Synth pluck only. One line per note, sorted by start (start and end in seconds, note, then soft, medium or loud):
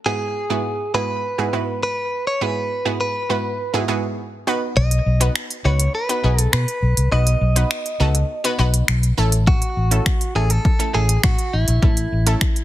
0.06 0.35 G#2 medium
0.06 0.35 B3 medium
0.06 0.35 E4 medium
0.06 0.35 F#4 medium
0.06 0.35 G#4 medium
0.50 0.79 G#2 medium
0.50 0.79 B3 medium
0.50 0.79 E4 medium
0.50 0.79 F#4 medium
0.50 0.79 G#4 medium
0.94 1.23 G#2 medium
0.94 1.23 B3 medium
0.94 1.23 E4 medium
0.94 1.23 F#4 medium
0.94 1.23 G#4 medium
1.38 1.48 G#2 medium
1.38 1.48 B3 medium
1.38 1.48 E4 medium
1.38 1.48 F#4 medium
1.38 1.48 G#4 medium
1.53 2.11 G#2 medium
1.53 2.11 B3 medium
1.53 2.11 E4 medium
1.53 2.11 F#4 medium
1.53 2.11 B4 medium
2.41 2.70 G#2 medium
2.41 2.70 B3 medium
2.41 2.70 E4 medium
2.41 2.70 F#4 medium
2.41 2.70 G#4 medium
2.85 3.14 G#2 medium
2.85 3.14 B3 medium
2.85 3.14 E4 medium
2.85 3.14 F#4 medium
2.85 3.14 G#4 medium
3.29 3.58 G#2 medium
3.29 3.58 B3 medium
3.29 3.58 E4 medium
3.29 3.58 F#4 medium
3.29 3.59 B4 medium
3.74 3.83 G#2 medium
3.74 3.83 B3 medium
3.74 3.83 E4 medium
3.74 3.83 F#4 medium
3.74 3.84 G#4 loud
3.88 4.46 G#2 medium
3.88 4.46 B3 medium
3.88 4.46 E4 medium
3.88 4.46 F#4 medium
3.88 4.46 G#4 loud
4.47 5.06 B3 loud
4.47 5.06 D#4 medium
4.47 5.06 F#4 medium
4.47 5.06 B4 loud
5.20 5.49 B3 medium
5.20 5.50 D#4 medium
5.20 5.50 F#4 medium
5.20 5.50 B4 medium
5.65 5.93 B3 medium
5.65 5.94 D#4 medium
5.65 5.94 F#4 medium
5.65 5.94 B4 medium
6.09 6.19 B3 medium
6.09 6.19 D#4 medium
6.09 6.19 F#4 medium
6.09 6.19 B4 medium
6.24 6.81 B3 medium
6.24 6.81 D#4 medium
6.24 6.81 F#4 medium
6.24 6.81 G#4 medium
7.12 7.41 B3 medium
7.12 7.41 D#4 medium
7.12 7.41 F#4 medium
7.12 7.41 B4 medium
7.56 7.85 B3 medium
7.56 7.85 D#4 medium
7.56 7.85 F#4 medium
7.56 7.85 B4 medium
8.00 8.29 B3 medium
8.00 8.29 D#4 medium
8.00 8.29 F#4 medium
8.00 8.29 A4 loud
8.44 8.54 B3 loud
8.44 8.54 D#4 medium
8.44 8.54 F#4 medium
8.44 8.54 B4 loud
8.59 9.16 B3 medium
8.59 9.16 D#4 medium
8.59 9.16 F#4 medium
8.59 9.17 B4 loud
9.18 9.77 A3 loud
9.18 9.77 C#4 medium
9.18 9.77 E4 medium
9.18 9.77 A4 loud
9.91 10.20 A3 medium
9.91 10.20 C#4 medium
9.91 10.20 E4 medium
9.91 10.20 A4 medium
10.35 10.64 A3 medium
10.35 10.64 C#4 medium
10.35 10.64 E4 medium
10.35 10.64 A4 medium
10.79 10.89 A3 medium
10.79 10.89 C#4 medium
10.79 10.89 E4 medium
10.79 10.89 A4 medium
10.94 11.52 A3 medium
10.94 11.52 C#4 medium
10.94 11.52 E4 medium
10.94 11.52 A4 medium
11.82 12.11 A3 medium
11.82 12.11 C#4 medium
11.82 12.11 E4 medium
11.82 12.11 A4 medium
12.26 12.55 A3 medium
12.26 12.55 C#4 medium
12.26 12.56 E4 medium
12.26 12.56 A4 loud